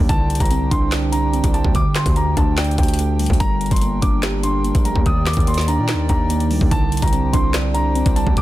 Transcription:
Already playing: synth keys D#3 G3 A#3 D4 D#4, harmonium G5
0.09 808-style bass C2, synth keys D3, harmonium D4 G4 C5, grand piano A5, kick, closed hi-hat
0.30 closed hi-hat
0.35 closed hi-hat
0.40 808-style bass C2, grand piano A#5, kick, closed hi-hat
0.46 closed hi-hat
0.51 synth keys C4, closed hi-hat
0.71 808-style bass C2, synth keys D4, grand piano C6, kick, closed hi-hat
0.92 synth keys D5, snare, clap, closed hi-hat
1.12 synth keys D4, grand piano A#5, closed hi-hat
1.33 synth keys C4, closed hi-hat
1.44 808-style bass C2, kick, closed hi-hat
1.54 synth keys G3, grand piano A5, closed hi-hat
1.64 808-style bass D2, kick
1.75 synth keys D3, grand piano D6, kick, closed hi-hat
1.95 grand piano C6, snare, clap, closed hi-hat
2.06 808-style bass D2, kick, closed hi-hat
2.16 synth keys A3, grand piano A#5, closed hi-hat
2.37 808-style bass D2, synth keys D4, grand piano A5, kick, closed hi-hat
2.57 synth keys D5, grand piano G5, snare, clap, closed hi-hat
2.64 closed hi-hat
2.71 closed hi-hat
2.78 808-style bass D2, grand piano G5, kick, closed hi-hat
2.83 closed hi-hat
2.88 closed hi-hat
2.94 closed hi-hat
2.99 synth keys A3, closed hi-hat
3.19 synth keys G3, closed hi-hat, open hi-hat
3.26 808-style bass D2, kick, closed hi-hat
3.33 closed hi-hat
3.40 808-style bass G1, synth keys G3, harmonium A#4, grand piano A#5, kick, closed hi-hat
3.61 closed hi-hat
3.66 closed hi-hat
3.71 808-style bass G1, grand piano C6, kick, closed hi-hat
3.76 closed hi-hat
3.81 synth keys A#3, closed hi-hat
4.02 808-style bass G1, synth keys D4, grand piano D6, kick, closed hi-hat
4.23 synth keys G4, snare, clap, closed hi-hat
4.43 synth keys D4, grand piano C6, closed hi-hat
4.64 synth keys A#3, closed hi-hat
4.75 808-style bass A#1, kick, closed hi-hat
4.85 synth keys A3, grand piano A#5, closed hi-hat
4.96 808-style bass D#2, kick
5.06 harmonium D#3 D5 G5, synth keys D#3, grand piano D#6, kick, closed hi-hat
5.26 grand piano D6, snare, clap, closed hi-hat
5.33 808-style bass D#2, kick, closed hi-hat
5.40 closed hi-hat
5.47 synth keys A#3, grand piano C6, closed hi-hat
5.54 snare, closed hi-hat
5.61 closed hi-hat
5.68 synth keys D4, grand piano A#5, closed hi-hat
5.78 808-style bass A#2
5.88 snare, clap, closed hi-hat
5.94 808-style bass D#2
6.09 808-style bass D#2, synth keys D4, grand piano A#5, kick, closed hi-hat
6.30 synth keys A#3, closed hi-hat
6.40 closed hi-hat
6.51 808-style bass D2, synth keys G3, open hi-hat
6.61 808-style bass D#2, kick
6.71 808-style bass C2, synth keys D3, harmonium D4 G4 C5, grand piano A5, kick, closed hi-hat
6.92 closed hi-hat
6.97 closed hi-hat
7.02 808-style bass C2, grand piano A#5, kick, closed hi-hat
7.08 closed hi-hat
7.13 synth keys C4, closed hi-hat
7.33 808-style bass C2, synth keys D4, grand piano C6, kick, closed hi-hat
7.54 synth keys D5, snare, clap, closed hi-hat
7.74 synth keys D4, grand piano A#5, closed hi-hat
7.95 synth keys C4, closed hi-hat
8.06 808-style bass C2, kick, closed hi-hat
8.16 synth keys G3, grand piano A5, closed hi-hat
8.27 808-style bass D2, kick
8.37 synth keys D3, harmonium A4 G5, grand piano D6, kick, closed hi-hat

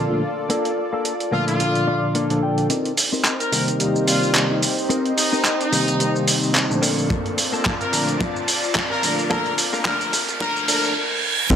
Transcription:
Already playing: clean electric guitar A#3 D4 A4, analog synth pad F4 A4 D5
0.09 tine electric piano A#2 D3 F3 A3 D4
0.50 clean electric guitar A#3 D4 A4, closed hi-hat
0.65 closed hi-hat
0.93 clean electric guitar A#3 D4 A4
1.05 closed hi-hat
1.20 closed hi-hat
1.32 tine electric piano A#2 D3 F3 A3 D4, clean electric guitar A#3 D4 A4, trumpet section F4
1.48 trumpet section F4, closed hi-hat
1.59 tine electric piano A#2 D3 F3 D4 A4, closed hi-hat
1.75 closed hi-hat
1.87 clean electric guitar D5, muted clean electric guitar stroke
2.03 muted clean electric guitar stroke
2.15 clean electric guitar A#3 D4 A4 F5, closed hi-hat
2.30 tine electric piano A#2 D3 F3 D4 A4, closed hi-hat
2.43 clean electric guitar G5
2.58 closed hi-hat
2.70 clean electric guitar C4 D#4 A#4, analog synth pad C4 D#4 G4 C5, closed hi-hat, riser, shaker
2.85 closed hi-hat
2.97 open hi-hat, shaker
3.12 clean electric guitar C4 D#4 A#4, shaker
3.25 clap, closed hi-hat, shaker
3.40 trumpet section A#4, closed hi-hat, shaker
3.52 tine electric piano C3 D#3 G3 A#3 D#4, muted clean electric guitar stroke, open hi-hat, shaker
3.67 muted clean electric guitar stroke, closed hi-hat, shaker
3.79 tine electric piano C3 D#3 G3 A#3 D#4, muted clean electric guitar stroke, closed hi-hat, shaker
3.96 shaker
4.07 tine electric piano C3 D#3 G3 A#3 D5, trumpet section F4, open hi-hat, shaker
4.23 shaker
4.35 muted clean electric guitar stroke, clap, closed hi-hat, shaker
4.50 tine electric piano C3 D#3 G3 A#3 D#4, muted clean electric guitar stroke
4.63 open hi-hat, shaker
4.78 shaker
4.89 clean electric guitar C4 D#4 A#4, closed hi-hat, shaker
5.06 closed hi-hat
5.17 trumpet section D#4, open hi-hat, shaker
5.32 clean electric guitar C4 D#4 A#4, shaker
5.45 clap, closed hi-hat, shaker
5.60 trumpet section D#4, closed hi-hat, shaker
5.72 tine electric piano C3 D#3 G3 A#3 D#4, muted clean electric guitar stroke, open hi-hat, shaker
5.87 muted clean electric guitar stroke, closed hi-hat, shaker
5.99 tine electric piano C3 D#3 G3 A#3 D#4, muted clean electric guitar stroke, closed hi-hat, shaker
6.16 shaker
6.28 open hi-hat, shaker
6.43 shaker
6.55 muted clean electric guitar stroke, clap, closed hi-hat, shaker
6.69 tine electric piano A#2 D3 F3 A3 D4, muted clean electric guitar stroke, shaker
6.82 clean electric guitar A#3 D4 A4, analog synth pad F4 D5 A5, open hi-hat, shaker
6.99 shaker
7.10 kick, closed hi-hat, shaker
7.26 closed hi-hat
7.38 open hi-hat, shaker
7.52 clean electric guitar A#3 D4 A4, shaker
7.65 kick, clap, closed hi-hat, shaker
7.81 trumpet section A#4, closed hi-hat, shaker
7.92 tine electric piano A#2 D3 F3 A3 D4, muted clean electric guitar stroke, open hi-hat, shaker
8.08 muted clean electric guitar stroke, closed hi-hat, shaker
8.20 muted clean electric guitar stroke, kick, closed hi-hat, shaker
8.36 shaker
8.48 open hi-hat, shaker
8.64 shaker
8.75 muted clean electric guitar stroke, kick, clap, closed hi-hat, shaker
8.90 trumpet section A#4, muted clean electric guitar stroke
9.02 tine electric piano A#2 D3 F3 A3 D4, open hi-hat, shaker
9.19 shaker
9.30 tine electric piano A#2 D3 F3 A3 D4, clean electric guitar A#3 D4 A4, trumpet section A#4, kick, closed hi-hat, shaker
9.46 closed hi-hat
9.58 open hi-hat, shaker
9.73 clean electric guitar A#3 D4 A#4, shaker
9.85 tine electric piano A#2 D3 F3 A3 D4, trumpet section A#4, kick, clap, closed hi-hat, shaker
10.01 closed hi-hat, shaker
10.12 muted clean electric guitar stroke, open hi-hat, shaker
10.28 muted clean electric guitar stroke, closed hi-hat, shaker
10.40 tine electric piano A#2 D3 F3 A3 D4, trumpet section A#4, muted clean electric guitar stroke, kick, closed hi-hat, reverse cymbal, shaker
10.56 shaker
10.67 tine electric piano A#2 D3 F3 A3 D4, trumpet section A#4, open hi-hat, shaker
10.84 shaker
11.50 analog synth bass C2, tine electric piano C3 D#3 G3 A#3 D#4, clean electric guitar C4 D#4 G4 A#4, kick, closed hi-hat, crash, shaker

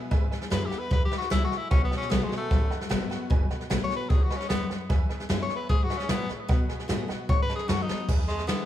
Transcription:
Already playing: steel-string acoustic guitar B3 E4
0.11 steel-string acoustic guitar E2, upright bass G#2, honky-tonk piano B4 E5 G#5, kick, snare
0.31 honky-tonk piano B4 E5 G#5, muted upright bass stroke, snare
0.41 snare
0.50 upright bass F#2, steel-string acoustic guitar D3 G#3 B3 E4, honky-tonk piano B4 E5 G#5, tenor saxophone B4, snare, hi-hat pedal
0.66 tenor saxophone G4
0.70 steel-string acoustic guitar B3 E4, honky-tonk piano B4 E5 F#5, muted upright bass stroke, snare
0.79 tenor saxophone B4
0.91 upright bass E2, steel-string acoustic guitar G#2, honky-tonk piano B4 E5 B5, tenor saxophone B4, kick, snare
1.05 tenor saxophone G4
1.11 honky-tonk piano B4 E5 B5, muted upright bass stroke, snare
1.18 tenor saxophone F#4, snare
1.30 upright bass C#2, steel-string acoustic guitar A2, tenor saxophone E4, honky-tonk piano B4 E5 G#5, snare, hi-hat pedal
1.45 tenor saxophone F#4
1.51 honky-tonk piano B4 E5 G#5, muted upright bass stroke, snare
1.57 tenor saxophone E4
1.71 upright bass B1, steel-string acoustic guitar B2, tenor saxophone C#4, honky-tonk piano B4 D#5 F#5, kick, snare
1.84 tenor saxophone B3
1.91 honky-tonk piano B4 D#5 F#5, muted upright bass stroke, snare
1.97 tenor saxophone C#4
2.01 snare
2.09 upright bass A#1, steel-string acoustic guitar D#3 A3 B3 F#4, tenor saxophone B3, honky-tonk piano B4 D#5 G#5, snare, hi-hat pedal
2.24 tenor saxophone G#3
2.29 steel-string acoustic guitar B3 F#4, honky-tonk piano B4 D#5 G#5, muted upright bass stroke, snare
2.37 tenor saxophone A3
2.50 upright bass A1, steel-string acoustic guitar F#2, honky-tonk piano B4 D#5 F#5, kick, snare
2.70 honky-tonk piano B4 D#5 F#5, muted upright bass stroke, snare
2.81 snare
2.89 upright bass G#1, steel-string acoustic guitar D#3 A3 B3 F#4, honky-tonk piano B4 D#5 F#5, snare, hi-hat pedal
3.10 steel-string acoustic guitar B3 F#4, honky-tonk piano B4 D#5 F#5, muted upright bass stroke, snare
3.30 upright bass F#1, steel-string acoustic guitar B2, honky-tonk piano B4 D#5 G#5, kick, snare
3.50 honky-tonk piano B4 D#5 F#5, muted upright bass stroke, snare
3.61 snare
3.70 upright bass A1, steel-string acoustic guitar D#3 A3 B3 F#4, honky-tonk piano B4 D#5 F#5, snare, hi-hat pedal
3.84 tenor saxophone C#5
3.90 steel-string acoustic guitar B3 F#4, honky-tonk piano B4 D#5 G#5, muted upright bass stroke, snare
3.96 tenor saxophone B4
4.10 upright bass C#2, steel-string acoustic guitar G#2, tenor saxophone G#4, honky-tonk piano B4 D#5 F#5, kick, snare
4.23 tenor saxophone F#4
4.30 honky-tonk piano B4 D#5 G#5, muted upright bass stroke, snare
4.37 tenor saxophone C#4, snare
4.49 upright bass D#2, steel-string acoustic guitar F#2, tenor saxophone B3, honky-tonk piano B4 D#5 F#5, snare, hi-hat pedal
4.70 honky-tonk piano B4 D#5 F#5, muted upright bass stroke, snare
4.89 steel-string acoustic guitar E2, upright bass E2, honky-tonk piano B4 E5 G#5, kick, snare
5.09 honky-tonk piano B4 E5 G#5, muted upright bass stroke, snare
5.20 snare
5.29 upright bass F#2, steel-string acoustic guitar D3 G#3 B3 E4, honky-tonk piano B4 E5 G#5, snare, hi-hat pedal
5.43 tenor saxophone C#5
5.49 steel-string acoustic guitar B3 E4, honky-tonk piano B4 E5 G#5, muted upright bass stroke, snare
5.56 tenor saxophone B4
5.69 steel-string acoustic guitar G#2, upright bass G#2, tenor saxophone G#4, honky-tonk piano B4 E5 G#5, kick, snare
5.84 tenor saxophone F#4
5.90 honky-tonk piano B4 E5 G#5, muted upright bass stroke, snare
5.98 tenor saxophone C#4, snare
6.09 steel-string acoustic guitar A2, upright bass A#2, tenor saxophone B3, honky-tonk piano B4 E5 G#5, snare, hi-hat pedal
6.29 honky-tonk piano B4 E5 B5, muted upright bass stroke, snare
6.48 steel-string acoustic guitar B2, upright bass B2, honky-tonk piano B4 D#5 F#5, kick, snare
6.69 honky-tonk piano B4 D#5 G#5, muted upright bass stroke, snare
6.79 snare
6.88 upright bass A2, steel-string acoustic guitar D#3 A3 B3 F#4, honky-tonk piano B4 D#5 G#5, snare, hi-hat pedal
7.08 steel-string acoustic guitar B3 F#4, honky-tonk piano B4 D#5 F#5, muted upright bass stroke, snare
7.29 steel-string acoustic guitar F#2, upright bass G#2, honky-tonk piano B4 D#5 F#5, tenor saxophone C#5, kick, snare
7.42 tenor saxophone B4
7.49 honky-tonk piano B4 D#5 A5, muted upright bass stroke, snare
7.56 tenor saxophone G#4, snare
7.68 upright bass F#2, steel-string acoustic guitar D#3 A3 B3 F#4, tenor saxophone F#4, honky-tonk piano B4 D#5 A5, snare, hi-hat pedal
7.82 tenor saxophone D#4
7.88 steel-string acoustic guitar B3 F#4, honky-tonk piano B4 D#5 A5, muted upright bass stroke, snare
8.09 steel-string acoustic guitar E2, upright bass E2, honky-tonk piano B4 E5 G#5, kick, snare, crash
8.28 tenor saxophone G#3, honky-tonk piano B4 E5 G#5, snare
8.39 snare
8.47 steel-string acoustic guitar D3 G#3 B3 E4, tenor saxophone B3, honky-tonk piano B4 E5 G#5, snare, hi-hat pedal

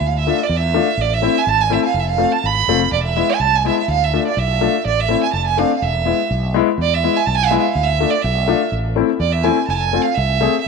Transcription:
0.01 fretless electric bass D2
0.07 violin F5
0.19 violin E5
0.27 upright piano A3 D4 F4
0.43 violin D5
0.49 fretless electric bass E2
0.57 violin E5
0.74 upright piano A3 D4 F4
0.97 fretless electric bass A1, violin D5
1.14 violin E5
1.22 upright piano A3 C4 E4
1.38 violin G#5
1.47 fretless electric bass G#1, violin A5
1.61 violin G#5
1.70 upright piano A3 C4 E4, violin E5
1.82 violin F5 G#5
1.94 fretless electric bass F1, violin F5
1.99 violin E5
2.10 violin F5
2.18 upright piano A3 C4 F4
2.32 violin A5
2.44 fretless electric bass G#1, violin B5
2.68 fretless electric bass F1, upright piano A3 C4 F4
2.91 fretless electric bass E1, violin D5
3.03 violin E5
3.16 upright piano G#3 B3 E4
3.30 violin G#5
3.40 fretless electric bass C2, violin A5
3.55 violin G#5
3.65 upright piano G#3 B3 E4, violin E5
3.79 violin E5
3.88 fretless electric bass D2, violin F5
4.04 violin E5
4.14 upright piano A3 D4 F4
4.27 violin D5
4.37 fretless electric bass B1, violin E5
4.61 upright piano A3 D4 F4
4.85 fretless electric bass A1, violin D5
5.00 violin E5
5.09 upright piano A3 C4 E4
5.23 violin G#5
5.33 fretless electric bass F1, violin A5
5.47 violin G#5
5.57 upright piano A3 C4 D4, violin F5
5.77 violin F5
5.82 fretless electric bass E1, violin E5
6.05 upright piano G#3 B3 E4
6.31 fretless electric bass B1
6.54 upright piano G#3 B3 E4
6.78 fretless electric bass E2
6.82 violin D5
6.94 violin E5
7.04 upright piano G#3 B3 E4
7.16 violin G#5
7.26 fretless electric bass B1, violin A5
7.36 violin G#5
7.43 violin F5 G#5
7.48 upright piano G#3 B3, violin E5
7.52 upright piano E4
7.58 violin E5 F5
7.69 violin F5
7.75 fretless electric bass D2
7.83 violin E5
8.00 upright piano A3 D4 F4
8.10 violin D5
8.22 fretless electric bass B1, violin E5
8.48 upright piano A3 D4 F4
8.72 fretless electric bass A1
8.96 upright piano A3 C4 E4
9.20 fretless electric bass E2, violin D5
9.32 violin E5
9.44 upright piano A3 C4 E4, violin G#5
9.67 fretless electric bass F1, violin G#5 A5
9.71 violin A5
9.77 violin G#5
9.93 upright piano A3 C4 F4
10.02 violin F5
10.15 fretless electric bass C2, violin E5
10.41 upright piano A3 C4 G#4
10.61 violin E5

